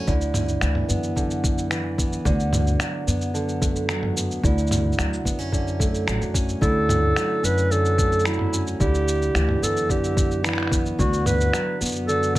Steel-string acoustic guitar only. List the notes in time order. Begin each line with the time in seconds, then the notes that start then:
Already playing: F#3 A3 C#4
0.07 D3 E4
0.61 E3
0.89 B3
1.16 D3
1.71 E3
1.98 B3
2.25 D3 F#4
2.80 F#3
3.07 B3
3.34 D3
3.61 A3
3.89 F#3
4.16 B3
4.43 D3 E4
4.98 F#3
5.25 B3
5.39 C#4
5.52 D3
5.79 A3
6.07 F#3
6.34 C#4
6.61 D3 E4
7.16 F#3
7.43 C#4
7.71 D3
7.98 A3
8.26 F#3
8.53 C#4
8.80 D3 E4
9.35 E3
9.62 B3
9.89 D3
10.44 E3
10.71 B3
10.98 D3 F#4
11.53 F#3
11.81 B3
12.08 D3
12.35 A3